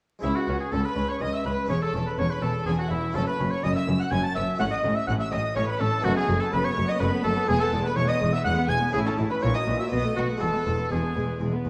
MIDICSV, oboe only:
0, 0, Header, 1, 2, 480
1, 0, Start_track
1, 0, Key_signature, 4, "minor"
1, 0, Tempo, 483871
1, 230, Time_signature, 3, 2, 24, 8
1, 5999, Key_signature, 4, "major"
1, 8867, Tempo, 493421
1, 11549, End_track
2, 0, Start_track
2, 0, Title_t, "Oboe"
2, 0, Program_c, 0, 68
2, 226, Note_on_c, 0, 64, 102
2, 356, Note_on_c, 0, 66, 92
2, 371, Note_off_c, 0, 64, 0
2, 592, Note_off_c, 0, 66, 0
2, 598, Note_on_c, 0, 68, 86
2, 724, Note_on_c, 0, 69, 97
2, 738, Note_off_c, 0, 68, 0
2, 843, Note_on_c, 0, 71, 84
2, 858, Note_off_c, 0, 69, 0
2, 1083, Note_on_c, 0, 73, 88
2, 1098, Note_off_c, 0, 71, 0
2, 1205, Note_on_c, 0, 75, 102
2, 1220, Note_off_c, 0, 73, 0
2, 1314, Note_off_c, 0, 75, 0
2, 1320, Note_on_c, 0, 76, 91
2, 1438, Note_off_c, 0, 76, 0
2, 1448, Note_on_c, 0, 71, 103
2, 1676, Note_off_c, 0, 71, 0
2, 1682, Note_on_c, 0, 73, 94
2, 1801, Note_off_c, 0, 73, 0
2, 1807, Note_on_c, 0, 69, 92
2, 1915, Note_off_c, 0, 69, 0
2, 2047, Note_on_c, 0, 71, 80
2, 2161, Note_off_c, 0, 71, 0
2, 2167, Note_on_c, 0, 73, 102
2, 2287, Note_on_c, 0, 71, 87
2, 2302, Note_off_c, 0, 73, 0
2, 2399, Note_on_c, 0, 69, 89
2, 2414, Note_off_c, 0, 71, 0
2, 2636, Note_off_c, 0, 69, 0
2, 2642, Note_on_c, 0, 68, 93
2, 2697, Note_off_c, 0, 68, 0
2, 2764, Note_on_c, 0, 66, 76
2, 2819, Note_off_c, 0, 66, 0
2, 2887, Note_on_c, 0, 64, 93
2, 3127, Note_on_c, 0, 69, 96
2, 3142, Note_off_c, 0, 64, 0
2, 3239, Note_off_c, 0, 69, 0
2, 3245, Note_on_c, 0, 71, 104
2, 3484, Note_on_c, 0, 73, 96
2, 3499, Note_off_c, 0, 71, 0
2, 3608, Note_on_c, 0, 75, 106
2, 3623, Note_off_c, 0, 73, 0
2, 3720, Note_off_c, 0, 75, 0
2, 3726, Note_on_c, 0, 76, 93
2, 3835, Note_off_c, 0, 76, 0
2, 3962, Note_on_c, 0, 78, 97
2, 4079, Note_on_c, 0, 80, 104
2, 4094, Note_off_c, 0, 78, 0
2, 4193, Note_off_c, 0, 80, 0
2, 4199, Note_on_c, 0, 81, 100
2, 4310, Note_off_c, 0, 81, 0
2, 4316, Note_on_c, 0, 76, 112
2, 4554, Note_off_c, 0, 76, 0
2, 4558, Note_on_c, 0, 78, 110
2, 4613, Note_off_c, 0, 78, 0
2, 4671, Note_on_c, 0, 75, 120
2, 4912, Note_on_c, 0, 76, 87
2, 4927, Note_off_c, 0, 75, 0
2, 5027, Note_off_c, 0, 76, 0
2, 5033, Note_on_c, 0, 78, 115
2, 5088, Note_off_c, 0, 78, 0
2, 5153, Note_on_c, 0, 76, 93
2, 5277, Note_on_c, 0, 75, 111
2, 5292, Note_off_c, 0, 76, 0
2, 5512, Note_off_c, 0, 75, 0
2, 5518, Note_on_c, 0, 73, 104
2, 5572, Note_off_c, 0, 73, 0
2, 5631, Note_on_c, 0, 71, 96
2, 5756, Note_on_c, 0, 69, 116
2, 5771, Note_off_c, 0, 71, 0
2, 6000, Note_on_c, 0, 66, 113
2, 6015, Note_off_c, 0, 69, 0
2, 6112, Note_off_c, 0, 66, 0
2, 6118, Note_on_c, 0, 68, 107
2, 6360, Note_on_c, 0, 69, 106
2, 6375, Note_off_c, 0, 68, 0
2, 6479, Note_on_c, 0, 71, 124
2, 6494, Note_off_c, 0, 69, 0
2, 6596, Note_on_c, 0, 73, 109
2, 6610, Note_off_c, 0, 71, 0
2, 6830, Note_on_c, 0, 75, 92
2, 6845, Note_off_c, 0, 73, 0
2, 6939, Note_off_c, 0, 75, 0
2, 6945, Note_on_c, 0, 71, 102
2, 7054, Note_off_c, 0, 71, 0
2, 7181, Note_on_c, 0, 69, 118
2, 7419, Note_off_c, 0, 69, 0
2, 7425, Note_on_c, 0, 68, 117
2, 7480, Note_off_c, 0, 68, 0
2, 7536, Note_on_c, 0, 69, 104
2, 7647, Note_off_c, 0, 69, 0
2, 7780, Note_on_c, 0, 71, 103
2, 7903, Note_on_c, 0, 73, 122
2, 7918, Note_off_c, 0, 71, 0
2, 8024, Note_on_c, 0, 75, 104
2, 8039, Note_off_c, 0, 73, 0
2, 8263, Note_on_c, 0, 76, 97
2, 8278, Note_off_c, 0, 75, 0
2, 8372, Note_off_c, 0, 76, 0
2, 8378, Note_on_c, 0, 78, 124
2, 8621, Note_on_c, 0, 80, 116
2, 8636, Note_off_c, 0, 78, 0
2, 8852, Note_off_c, 0, 80, 0
2, 8858, Note_on_c, 0, 68, 115
2, 8914, Note_off_c, 0, 68, 0
2, 8986, Note_on_c, 0, 69, 93
2, 9094, Note_off_c, 0, 69, 0
2, 9221, Note_on_c, 0, 71, 107
2, 9343, Note_on_c, 0, 73, 106
2, 9357, Note_off_c, 0, 71, 0
2, 9458, Note_off_c, 0, 73, 0
2, 9464, Note_on_c, 0, 75, 101
2, 9693, Note_off_c, 0, 75, 0
2, 9698, Note_on_c, 0, 76, 85
2, 9754, Note_off_c, 0, 76, 0
2, 9824, Note_on_c, 0, 75, 99
2, 9932, Note_off_c, 0, 75, 0
2, 10060, Note_on_c, 0, 66, 95
2, 10169, Note_off_c, 0, 66, 0
2, 10294, Note_on_c, 0, 69, 113
2, 10775, Note_off_c, 0, 69, 0
2, 10791, Note_on_c, 0, 68, 79
2, 11260, Note_off_c, 0, 68, 0
2, 11549, End_track
0, 0, End_of_file